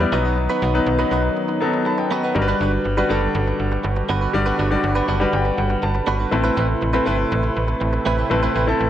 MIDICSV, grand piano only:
0, 0, Header, 1, 2, 480
1, 0, Start_track
1, 0, Tempo, 495868
1, 362, Time_signature, 4, 2, 24, 8
1, 8612, End_track
2, 0, Start_track
2, 0, Title_t, "Grand piano"
2, 0, Program_c, 0, 0
2, 0, Control_c, 0, 64, 127
2, 0, Note_on_c, 0, 55, 85
2, 0, Note_on_c, 0, 59, 76
2, 0, Note_on_c, 0, 64, 73
2, 0, Note_on_c, 0, 71, 94
2, 4, Note_off_c, 0, 64, 0
2, 4, Note_on_c, 0, 64, 70
2, 6, Note_on_c, 0, 74, 90
2, 102, Note_off_c, 0, 59, 0
2, 112, Note_on_c, 0, 54, 83
2, 116, Note_on_c, 0, 59, 76
2, 118, Note_off_c, 0, 55, 0
2, 118, Note_on_c, 0, 63, 75
2, 123, Note_off_c, 0, 64, 0
2, 124, Note_off_c, 0, 71, 0
2, 124, Note_off_c, 0, 74, 0
2, 124, Note_on_c, 0, 71, 94
2, 133, Control_c, 0, 64, 0
2, 331, Control_c, 0, 64, 127
2, 597, Note_off_c, 0, 54, 0
2, 599, Note_off_c, 0, 59, 0
2, 600, Note_off_c, 0, 63, 0
2, 603, Note_off_c, 0, 71, 0
2, 714, Note_on_c, 0, 54, 79
2, 718, Note_on_c, 0, 59, 74
2, 723, Note_on_c, 0, 63, 78
2, 725, Note_on_c, 0, 71, 93
2, 870, Note_off_c, 0, 54, 0
2, 872, Note_off_c, 0, 59, 0
2, 875, Note_off_c, 0, 63, 0
2, 876, Note_off_c, 0, 71, 0
2, 952, Note_on_c, 0, 54, 83
2, 955, Note_on_c, 0, 59, 72
2, 960, Note_on_c, 0, 63, 81
2, 963, Note_on_c, 0, 71, 94
2, 1338, Note_off_c, 0, 54, 0
2, 1340, Note_off_c, 0, 59, 0
2, 1342, Note_off_c, 0, 63, 0
2, 1343, Note_off_c, 0, 71, 0
2, 1553, Note_on_c, 0, 54, 83
2, 1556, Note_on_c, 0, 59, 79
2, 1560, Note_on_c, 0, 63, 75
2, 1564, Note_on_c, 0, 69, 91
2, 1786, Note_off_c, 0, 54, 0
2, 1787, Note_off_c, 0, 59, 0
2, 1790, Note_off_c, 0, 63, 0
2, 1792, Note_off_c, 0, 69, 0
2, 1800, Note_on_c, 0, 81, 71
2, 1802, Note_on_c, 0, 83, 68
2, 1913, Note_off_c, 0, 81, 0
2, 1924, Note_on_c, 0, 79, 66
2, 2030, Note_off_c, 0, 83, 0
2, 2038, Note_on_c, 0, 78, 65
2, 2042, Note_on_c, 0, 75, 55
2, 2258, Note_off_c, 0, 79, 0
2, 2271, Note_on_c, 0, 55, 89
2, 2275, Note_on_c, 0, 62, 75
2, 2280, Note_on_c, 0, 66, 77
2, 2284, Note_on_c, 0, 70, 76
2, 2295, Control_c, 0, 64, 0
2, 2339, Note_on_c, 0, 71, 96
2, 2340, Note_off_c, 0, 70, 0
2, 2485, Control_c, 0, 64, 127
2, 2496, Note_off_c, 0, 78, 0
2, 2498, Note_off_c, 0, 75, 0
2, 2658, Note_off_c, 0, 55, 0
2, 2660, Note_off_c, 0, 62, 0
2, 2662, Note_off_c, 0, 66, 0
2, 2691, Note_off_c, 0, 71, 0
2, 2875, Note_on_c, 0, 55, 83
2, 2878, Note_on_c, 0, 62, 76
2, 2883, Note_on_c, 0, 66, 78
2, 2886, Note_on_c, 0, 71, 87
2, 2955, Note_off_c, 0, 55, 0
2, 2956, Note_off_c, 0, 62, 0
2, 2959, Note_off_c, 0, 66, 0
2, 2960, Note_off_c, 0, 71, 0
2, 2991, Note_on_c, 0, 55, 84
2, 2996, Note_on_c, 0, 62, 79
2, 3001, Note_on_c, 0, 66, 75
2, 3004, Note_on_c, 0, 69, 94
2, 3606, Note_off_c, 0, 55, 0
2, 3608, Note_off_c, 0, 62, 0
2, 3611, Note_off_c, 0, 66, 0
2, 3612, Note_off_c, 0, 69, 0
2, 4195, Note_on_c, 0, 55, 85
2, 4198, Note_on_c, 0, 62, 78
2, 4201, Note_on_c, 0, 66, 73
2, 4207, Note_on_c, 0, 74, 94
2, 4427, Note_off_c, 0, 55, 0
2, 4429, Note_off_c, 0, 62, 0
2, 4430, Note_off_c, 0, 66, 0
2, 4433, Note_off_c, 0, 74, 0
2, 4554, Note_on_c, 0, 55, 78
2, 4557, Note_on_c, 0, 62, 74
2, 4559, Note_on_c, 0, 66, 77
2, 4564, Note_on_c, 0, 74, 91
2, 4863, Note_off_c, 0, 55, 0
2, 4864, Note_off_c, 0, 62, 0
2, 4865, Note_off_c, 0, 66, 0
2, 4868, Note_off_c, 0, 74, 0
2, 4917, Note_on_c, 0, 78, 72
2, 5032, Note_on_c, 0, 55, 86
2, 5036, Note_on_c, 0, 62, 73
2, 5040, Note_on_c, 0, 66, 77
2, 5045, Note_on_c, 0, 71, 90
2, 5143, Note_off_c, 0, 78, 0
2, 5160, Note_on_c, 0, 79, 78
2, 5384, Note_off_c, 0, 79, 0
2, 5396, Note_on_c, 0, 78, 70
2, 5622, Note_off_c, 0, 78, 0
2, 5641, Note_on_c, 0, 81, 73
2, 5646, Note_off_c, 0, 55, 0
2, 5648, Note_off_c, 0, 62, 0
2, 5651, Note_off_c, 0, 66, 0
2, 5653, Note_off_c, 0, 71, 0
2, 5865, Note_off_c, 0, 81, 0
2, 5882, Note_on_c, 0, 83, 71
2, 6105, Note_off_c, 0, 83, 0
2, 6110, Note_on_c, 0, 57, 83
2, 6115, Note_on_c, 0, 60, 75
2, 6119, Note_on_c, 0, 64, 79
2, 6123, Note_on_c, 0, 71, 92
2, 6136, Control_c, 0, 64, 0
2, 6294, Control_c, 0, 64, 127
2, 6497, Note_off_c, 0, 57, 0
2, 6499, Note_off_c, 0, 60, 0
2, 6501, Note_off_c, 0, 64, 0
2, 6503, Note_off_c, 0, 71, 0
2, 6712, Note_on_c, 0, 57, 85
2, 6716, Note_on_c, 0, 60, 79
2, 6721, Note_on_c, 0, 64, 80
2, 6726, Note_on_c, 0, 71, 89
2, 6793, Note_off_c, 0, 57, 0
2, 6795, Note_off_c, 0, 60, 0
2, 6798, Note_off_c, 0, 64, 0
2, 6800, Note_off_c, 0, 71, 0
2, 6831, Note_on_c, 0, 57, 85
2, 6835, Note_on_c, 0, 60, 78
2, 6839, Note_on_c, 0, 64, 76
2, 6843, Note_on_c, 0, 71, 98
2, 7446, Note_off_c, 0, 57, 0
2, 7448, Note_off_c, 0, 60, 0
2, 7450, Note_off_c, 0, 64, 0
2, 7452, Note_off_c, 0, 71, 0
2, 8032, Note_on_c, 0, 57, 81
2, 8036, Note_on_c, 0, 60, 78
2, 8041, Note_on_c, 0, 64, 80
2, 8047, Note_on_c, 0, 71, 97
2, 8266, Note_off_c, 0, 57, 0
2, 8268, Note_off_c, 0, 60, 0
2, 8270, Note_off_c, 0, 64, 0
2, 8273, Note_off_c, 0, 71, 0
2, 8395, Note_on_c, 0, 57, 82
2, 8398, Note_on_c, 0, 60, 78
2, 8402, Note_on_c, 0, 64, 76
2, 8405, Note_on_c, 0, 69, 90
2, 8612, Note_off_c, 0, 57, 0
2, 8612, Note_off_c, 0, 60, 0
2, 8612, Note_off_c, 0, 64, 0
2, 8612, Note_off_c, 0, 69, 0
2, 8612, End_track
0, 0, End_of_file